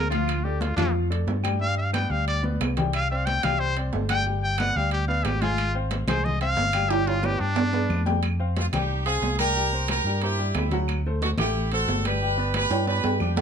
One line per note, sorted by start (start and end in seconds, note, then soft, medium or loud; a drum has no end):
0.00 0.72 D2 medium
0.10 0.38 F3 medium
0.10 0.38 F4 loud
0.10 0.45 F4 medium
0.10 0.38 F5 medium
0.10 high conga medium
0.10 high timbale medium
0.28 high conga soft
0.28 high timbale medium
0.28 claves medium
0.44 0.72 A3 medium
0.44 0.63 G4 medium
0.44 0.72 A4 medium
0.44 0.72 D5 medium
0.44 high conga soft
0.61 0.76 F4 medium
0.61 high conga medium
0.61 high timbale medium
0.61 low timbale medium
0.76 1.24 F2 medium
0.76 1.05 F3 medium
0.76 0.93 D4 medium
0.76 1.05 F4 medium
0.76 1.05 F5 medium
0.76 high conga loud
0.76 low conga medium
0.76 high timbale medium
0.76 claves medium
0.94 high conga soft
1.10 1.38 A3 medium
1.10 1.38 A4 medium
1.10 1.38 D5 medium
1.10 high conga soft
1.10 high timbale medium
1.27 2.05 G2 medium
1.27 high conga medium
1.27 low timbale medium
1.43 1.57 G3 medium
1.43 1.58 G4 medium
1.43 1.57 G5 medium
1.43 high conga medium
1.43 high timbale loud
1.43 claves medium
1.60 1.88 G3 medium
1.60 1.88 G4 medium
1.60 1.77 F5 loud
1.60 1.88 G5 medium
1.60 high conga soft
1.78 1.93 F5 medium
1.78 high conga soft
1.93 2.07 B3 medium
1.93 2.07 B4 medium
1.93 2.07 D5 medium
1.93 2.12 G5 medium
1.93 high conga medium
1.93 high timbale medium
1.93 low timbale medium
1.93 claves medium
2.09 2.57 D2 medium
2.09 2.37 G3 medium
2.09 2.37 G4 medium
2.09 2.27 F5 medium
2.09 2.37 G5 medium
2.09 high conga soft
2.28 2.44 D5 medium
2.28 high conga soft
2.28 high timbale medium
2.43 2.70 B3 medium
2.43 2.71 B4 medium
2.43 2.71 D5 medium
2.43 high conga medium
2.60 3.37 C2 medium
2.60 high conga medium
2.60 high timbale loud
2.60 low timbale medium
2.60 claves medium
2.77 3.04 G3 medium
2.77 3.04 G4 medium
2.77 3.05 G5 medium
2.77 low conga loud
2.77 high timbale medium
2.93 3.10 F5 loud
2.93 high conga soft
2.93 high timbale medium
2.93 claves medium
3.10 3.38 C4 medium
3.10 3.38 C5 medium
3.10 3.38 D5 medium
3.10 3.27 F5 medium
3.10 high conga soft
3.26 3.45 G5 loud
3.26 high conga medium
3.26 high timbale medium
3.26 low timbale medium
3.43 3.90 C2 medium
3.43 3.71 G3 medium
3.43 3.71 G4 medium
3.43 3.61 F5 medium
3.43 3.71 G5 medium
3.43 high conga medium
3.43 low conga medium
3.43 high timbale loud
3.43 claves medium
3.59 3.76 C5 loud
3.59 high conga soft
3.76 4.04 C4 medium
3.76 4.04 C5 medium
3.76 4.04 D5 medium
3.76 high conga soft
3.76 high timbale medium
3.93 4.70 G1 medium
3.93 high conga medium
3.93 low timbale medium
4.09 4.23 G3 medium
4.09 4.24 G4 medium
4.09 4.26 G5 loud
4.09 4.24 G5 medium
4.09 high conga medium
4.09 high timbale loud
4.09 claves medium
4.26 4.53 G3 medium
4.26 4.54 G4 medium
4.26 4.54 G5 medium
4.26 high conga soft
4.43 4.60 G5 medium
4.43 high conga soft
4.58 4.73 B3 medium
4.58 4.73 B4 medium
4.58 4.73 D5 medium
4.58 4.78 F#5 loud
4.58 high conga medium
4.58 high timbale medium
4.58 low timbale medium
4.58 claves medium
4.76 5.22 D2 medium
4.76 5.03 G3 medium
4.76 5.03 G4 medium
4.76 4.92 F5 medium
4.76 5.04 G5 medium
4.76 high conga soft
4.91 5.07 G4 medium
4.91 high conga soft
4.91 high timbale medium
5.08 5.36 B3 medium
5.08 5.36 B4 medium
5.08 5.36 D5 medium
5.08 5.26 F5 medium
5.08 high conga soft
5.25 6.02 G#1 medium
5.25 5.43 G4 medium
5.25 high conga medium
5.25 high timbale medium
5.25 low timbale medium
5.25 claves medium
5.41 5.69 G#3 loud
5.41 5.74 F4 loud
5.41 5.69 G#4 medium
5.41 5.70 G#5 loud
5.41 high conga medium
5.41 high timbale medium
5.58 high conga soft
5.58 high timbale medium
5.58 claves medium
5.75 6.02 C4 medium
5.75 6.02 C5 medium
5.75 6.02 F5 medium
5.75 high conga soft
5.91 high conga medium
5.91 high timbale medium
5.91 low timbale medium
6.07 6.54 C2 medium
6.07 6.35 G#3 medium
6.07 6.36 G#4 medium
6.07 6.26 C5 loud
6.07 6.36 G#5 medium
6.07 high conga loud
6.07 low conga medium
6.07 high timbale loud
6.07 claves medium
6.24 6.41 D#5 medium
6.24 high conga soft
6.24 low conga medium
6.41 6.68 C4 medium
6.41 6.69 C5 medium
6.41 6.69 F5 medium
6.41 6.92 F5 loud
6.41 high conga soft
6.41 high timbale medium
6.57 7.35 G1 loud
6.57 high conga medium
6.57 low timbale medium
6.73 6.87 G3 medium
6.73 6.88 G4 medium
6.73 6.88 G5 medium
6.73 high conga medium
6.73 high timbale loud
6.73 claves medium
6.89 7.17 G3 medium
6.89 7.17 G4 medium
6.89 7.09 G4 medium
6.89 7.17 G5 medium
6.89 high conga soft
6.89 high timbale medium
7.07 7.27 F4 medium
7.07 high conga soft
7.07 high timbale medium
7.23 7.37 B3 medium
7.23 7.41 G4 medium
7.23 7.37 B4 medium
7.23 7.37 D5 medium
7.23 high conga medium
7.23 high timbale medium
7.23 claves medium
7.39 7.87 G2 medium
7.39 7.67 G3 medium
7.39 8.05 D4 loud
7.39 7.67 G4 medium
7.39 7.68 G5 medium
7.39 high conga soft
7.56 low timbale medium
7.73 8.00 B3 medium
7.73 8.01 B4 medium
7.73 8.01 D5 medium
7.73 high conga soft
7.73 low timbale medium
7.89 8.67 F2 loud
7.89 high conga medium
7.89 claves medium
8.05 8.20 G3 medium
8.05 8.20 G4 medium
8.05 8.20 G5 loud
8.05 high conga medium
8.05 low timbale medium
8.23 high conga soft
8.23 high timbale medium
8.23 claves medium
8.39 8.67 C4 medium
8.39 8.67 C5 medium
8.39 8.67 F5 medium
8.39 high conga soft
8.57 8.65 C4 medium
8.57 8.65 F4 medium
8.57 high conga medium
8.57 high timbale medium
8.57 low timbale medium
8.73 9.19 C2 medium
8.73 9.00 G3 medium
8.73 9.05 D#4 medium
8.73 9.00 G4 medium
8.73 9.05 G4 medium
8.73 9.01 G5 medium
8.73 high conga medium
8.73 low conga medium
8.73 high timbale medium
8.73 claves medium
8.91 high conga soft
9.06 9.33 C4 medium
9.06 9.37 F4 medium
9.06 9.37 G#4 loud
9.06 9.34 C5 medium
9.06 9.34 F5 medium
9.06 high conga soft
9.06 high timbale medium
9.22 9.99 C2 medium
9.22 high conga medium
9.22 low timbale medium
9.38 9.53 G3 medium
9.38 9.85 G4 medium
9.38 9.53 G4 medium
9.38 9.85 A#4 loud
9.38 9.53 G5 medium
9.38 high conga medium
9.38 high timbale medium
9.38 claves medium
9.56 9.69 G3 medium
9.56 9.70 G4 medium
9.56 9.70 G5 medium
9.56 high conga soft
9.73 10.00 A#3 medium
9.73 10.00 A#4 medium
9.73 10.00 C5 medium
9.73 high conga soft
9.88 10.20 G4 medium
9.88 10.20 A#4 loud
9.88 high conga medium
9.88 high timbale loud
9.88 low timbale medium
9.88 claves medium
10.04 10.51 G2 medium
10.04 10.20 G3 medium
10.04 10.20 G4 medium
10.04 10.20 G5 medium
10.04 high conga soft
10.22 10.36 A#3 medium
10.22 10.53 E4 medium
10.22 10.53 G4 medium
10.22 10.36 A#4 medium
10.22 10.36 C5 medium
10.22 high conga soft
10.22 high timbale medium
10.39 10.66 G3 medium
10.39 10.66 G4 medium
10.39 10.66 G5 medium
10.39 high conga soft
10.54 11.32 D2 medium
10.54 10.79 C4 medium
10.54 10.79 E4 medium
10.54 high conga medium
10.54 high timbale medium
10.54 low timbale medium
10.54 claves medium
10.71 10.99 F#3 medium
10.71 10.99 F#4 medium
10.71 10.99 F#5 loud
10.71 high conga medium
10.71 high timbale medium
10.88 high conga soft
10.88 high timbale medium
10.88 claves medium
11.06 11.33 A3 medium
11.06 11.33 A4 medium
11.06 11.33 C5 medium
11.06 high conga soft
11.22 11.29 D4 medium
11.22 11.30 F#4 medium
11.22 high conga medium
11.22 high timbale medium
11.22 low timbale medium
11.37 11.84 A1 medium
11.37 11.66 A3 medium
11.37 11.69 E4 medium
11.37 11.69 G4 medium
11.37 11.66 A4 medium
11.37 11.66 F#5 medium
11.37 high conga medium
11.37 low conga medium
11.37 high timbale medium
11.37 claves medium
11.55 high conga soft
11.72 11.99 A3 medium
11.72 12.03 F#4 medium
11.72 11.99 A4 medium
11.72 12.03 A4 loud
11.72 12.00 C5 medium
11.72 high conga soft
11.72 high timbale medium
11.87 12.65 G1 medium
11.87 high conga medium
11.87 low timbale medium
12.05 12.19 G3 medium
12.05 12.53 G4 loud
12.05 12.19 G4 medium
12.05 12.54 B4 loud
12.05 12.19 G5 loud
12.05 high conga medium
12.05 high timbale medium
12.05 claves medium
12.21 12.35 G3 medium
12.21 12.35 G4 medium
12.21 12.35 G5 medium
12.21 high conga soft
12.37 12.64 B3 medium
12.37 12.64 B4 medium
12.37 12.65 D5 medium
12.37 high conga soft
12.54 12.85 G4 medium
12.54 12.85 B4 loud
12.54 high conga medium
12.54 high timbale loud
12.54 low timbale medium
12.54 claves medium
12.70 13.01 G2 medium
12.70 12.84 G3 medium
12.70 12.84 G4 medium
12.70 12.84 G5 medium
12.70 high conga soft
12.70 high timbale loud
12.86 13.00 B3 medium
12.86 13.18 G4 medium
12.86 13.00 B4 medium
12.86 13.18 B4 loud
12.86 13.01 D5 medium
12.86 high conga soft
12.86 high timbale medium
13.04 13.19 G2 medium
13.04 13.31 G3 medium
13.04 13.31 G4 medium
13.04 13.31 G5 medium
13.04 high conga soft
13.04 low timbale medium
13.20 13.41 F2 medium
13.20 13.41 D4 medium
13.20 13.41 G4 medium
13.20 high conga medium
13.20 claves medium
13.36 13.41 G3 medium
13.36 13.41 G4 medium
13.36 13.41 G5 medium
13.36 high conga medium
13.36 low timbale loud